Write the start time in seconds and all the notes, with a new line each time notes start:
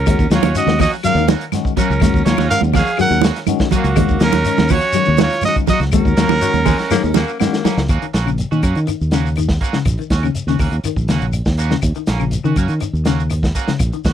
Already playing: C#4 A#4
0.06 D#2 D#3 G#3 C#4 F#4, kick, closed hi-hat, high conga, claves, shekere
0.19 D#2, kick, shekere
0.30 D#2 F#3 A#3 C#4 F#4, snare, closed hi-hat, shekere
0.35 F4 C#5
0.43 D#2 C#4 F#4, closed hi-hat, high conga, claves, shekere
0.55 D#3 G#3 C#4 F#4 D#5, snare, closed hi-hat, high conga, shekere
0.67 D#2, snare, high conga, shekere
0.79 F3 A#3 C#4 F#4 D#5, kick, snare, open hi-hat, low conga, claves, shekere
0.93 shekere
1.03 D#3 F#3 G#3 C#4 F#4 A#4 F5, closed hi-hat, high conga, claves, shekere
1.15 D#2 D#3, shekere
1.28 D#3 A#3 C#4 F#4, snare, closed hi-hat, high conga, shekere
1.41 closed hi-hat, shekere
1.52 D#3 G#3 C#4 F#4, snare, closed hi-hat, high conga, claves, shekere
1.65 kick, shekere
1.77 F#3 A#3 C#4 F#4 A#4, muted fingered electric bass stroke, kick, closed hi-hat, low conga, shekere
1.90 C#2, shekere
2.00 D#2 D#3 G#3 C#4 F#4, kick, snare, closed hi-hat, high conga, low conga, claves, shekere
2.14 D#2, kick, shekere
2.25 D#2 F#3 A#3 C#4 F4 C#5, snare, closed hi-hat, shekere
2.37 D#2 C#4 F#4, snare, high conga, claves, shekere
2.49 D#3 G#3 C#4 F#4 A#4 F5, snare, closed hi-hat, high conga, shekere
2.61 D#2, high conga, shekere
2.73 F3 A#3 C#4 F#4 F5, kick, snare, open hi-hat, high conga, low conga, claves, shekere
2.78 G#4
2.87 shekere
2.97 D#3 F#3 G#3 C#4 F#4 F#5, closed hi-hat, high conga, claves, shekere
3.02 A#4
3.11 D#2 F#3, shekere
3.21 D#3 A#3 C#4 F#4, snare, closed hi-hat, high conga, shekere
3.36 snare, closed hi-hat, shekere
3.47 D#3 G#3 C#4 F#4, closed hi-hat, high conga, claves, shekere
3.59 kick, snare, shekere
3.71 F#3 A#3 C#4 F#4, muted fingered electric bass stroke, kick, closed hi-hat, low conga, shekere
3.76 A#3 F#4
3.84 C#2, closed hi-hat, shekere
3.96 D#2 D#3 G#3 C#4 F#4, kick, closed hi-hat, high conga, low conga, claves, shekere
4.08 D#2, kick, shekere
4.20 D#2 F#3 A#3 C#4 A#4, muted clean electric guitar stroke, snare, closed hi-hat, shekere
4.25 C#4
4.32 D#2 C#4 F#4, snare, closed hi-hat, high conga, claves, shekere
4.45 D#3 G#3 C#4 D#4, closed hi-hat, shekere
4.57 D#2, snare, high conga, shekere
4.69 F3 A#3 C#4 F#4 C#5, kick, open hi-hat, low conga, claves, shekere
4.73 F#4
4.81 C#4 F#4, shekere
4.93 D#3 F#3 G#3 C#4 F#4, closed hi-hat, high conga, claves, shekere
5.05 D#2 D#3, shekere
5.17 D#3 A#3 C#4 F#4, snare, closed hi-hat, high conga, low conga, shekere
5.22 F4 C#5
5.30 snare, closed hi-hat, shekere
5.42 D#3 G#3 C#4 D#4 D#5, closed hi-hat, high conga, claves, shekere
5.48 F#4
5.56 kick, shekere
5.67 F#3 A#3 F#4 D#5, muted clean electric guitar stroke, muted fingered electric bass stroke, kick, closed hi-hat, low conga, shekere
5.73 F#4
5.80 C#2, snare, shekere
5.92 D#2 D#3 G#3 C#4 F#4 A#4, kick, closed hi-hat, high conga, claves, shekere
5.96 C#4
6.05 D#2, kick, shekere
6.17 D#2 F#3 A#3 C#4 F#4, snare, closed hi-hat, shekere
6.29 D#2 C#4 F#4, high conga, claves, shekere
6.41 D#3 F#3 G#3 C#4 F#4, closed hi-hat, high conga, shekere
6.54 D#2, high conga, shekere
6.65 F3 G#3 C#4 F#4, kick, open hi-hat, low conga, claves, shekere
6.78 C#4 F#4, snare, shekere
6.90 D#3 F#3 G#3 A#3 C#4 D#4, snare, high conga, claves, shekere
7.03 D#2 D#3, shekere
7.14 A#3 C#4 F#4, muted clean electric guitar stroke, snare, high conga, shekere
7.28 shekere
7.39 D#3 G#3 A#3 C#4 F#4, snare, high conga, claves, shekere
7.53 snare, shekere
7.64 F#3 A#3 C#4, muted fingered electric bass stroke, snare, low conga, shekere
7.77 C#2, snare, shekere
7.88 D#2 A#3 C#4 F#4, kick, closed hi-hat, claves, shekere
8.02 D#3, muted fingered electric bass stroke, closed hi-hat, shekere
8.13 A#1 A#3 C#4 F#4, snare, closed hi-hat, shekere
8.26 C#3, claves, shekere
8.38 closed hi-hat, shekere
8.51 A#2 D#3 C#4 F#4, shekere
8.62 F#2 A#3 C#4 F#4, kick, closed hi-hat, claves, shekere
8.75 D#3, closed hi-hat, shekere
8.87 D#3, closed hi-hat, claves, shekere
9.01 D#2, shekere
9.11 C#3 A#3 C#4 F#4, snare, closed hi-hat, shekere
9.26 shekere
9.36 D#3, closed hi-hat, claves, shekere
9.49 kick, snare, shekere
9.61 A#3 C#4 F#4, kick, closed hi-hat, shekere
9.73 C#3, muted fingered electric bass stroke, snare, shekere
9.85 A#1, kick, closed hi-hat, claves, shekere
9.98 D#3, closed hi-hat, shekere
10.10 D#2 C#4 F#4, kick, snare, closed hi-hat, shekere
10.23 C#3, closed hi-hat, claves, shekere
10.34 muted fingered electric bass stroke, closed hi-hat, shekere
10.47 D#2 C#3 C#4 F#4, snare, shekere
10.59 D#2 A#3 C#4 F#4, kick, open hi-hat, claves, shekere
10.71 D#2, closed hi-hat, shekere
10.84 D#3, muted fingered electric bass stroke, closed hi-hat, claves, shekere
10.96 A#1, kick, shekere
11.08 D#2 C#3 A#3 C#4 F#4, snare, closed hi-hat, shekere
11.21 A#1, closed hi-hat, shekere
11.33 closed hi-hat, claves, shekere
11.45 D#2, kick, snare, shekere
11.57 A#3 C#4 F#4, closed hi-hat, shekere
11.70 C#3, snare, shekere
11.82 D#2, kick, closed hi-hat, claves, shekere
11.95 D#3, closed hi-hat, shekere
12.07 A#1 A#3 C#4, muted clean electric guitar stroke, snare, closed hi-hat, shekere
12.20 C#3, claves, shekere
12.31 closed hi-hat, shekere
12.44 C#3 D#3 C#4 F#4, shekere
12.56 F#2 A#3 C#4 F#4, kick, closed hi-hat, claves, shekere
12.68 D#3, closed hi-hat, shekere
12.80 D#3, closed hi-hat, claves, shekere
12.93 D#2, shekere
13.05 C#3 A#3 C#4 F#4, snare, closed hi-hat, shekere
13.19 shekere
13.30 muted clean electric guitar stroke, closed hi-hat, claves, shekere
13.43 kick, snare, shekere
13.55 A#3 C#4 F#4, kick, closed hi-hat, shekere
13.68 C#3, muted fingered electric bass stroke, snare, shekere
13.79 A#1, kick, closed hi-hat, claves, shekere
13.92 D#3, closed hi-hat, shekere
14.04 D#2 F#4, kick, snare, closed hi-hat, shekere